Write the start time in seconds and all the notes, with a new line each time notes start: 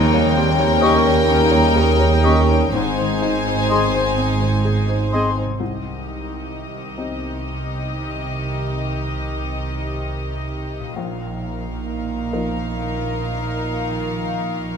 Already playing: D#2 C#3 D#3 G3 D#4 A#4 G5
0.13 G3 C#5
0.36 C4 D#4 G4
0.59 C#5
0.81 C#4 G4 A#4 D#5 C#6
1.06 C#5 D#5
1.29 C#4 D#4 C#6
1.51 C#5 D#5
1.76 A#4 C#6
2.00 C#5 D#5
2.23 C#4 G4 D#5 C#6
2.50 D#4 C#5
2.74 G#1 G#2 G#3 C4 D#4 C5 G#5
2.98 D#3 C5
3.22 G#3 D#4
3.47 D#4 C5
3.69 G#4 C5 D#5 C6
3.95 G#4 C5
4.17 C4 D#5
4.41 G#4 C5
4.65 G#4 D#5
4.89 G#4 C5
5.12 C4 G#4 C5 D#5 C6
5.37 G#3 C5
5.44 C3
5.48 G3 D#4
5.57 C2 C3 D#3 D#4 G4 C5 D#5
6.98 C4 D#4 G4
10.80 A#2
10.84 A#3
10.88 F4
10.93 A#1 A#2 D#3 D#5
10.98 D#4 A#4 F5
12.33 F3 D#4 A#4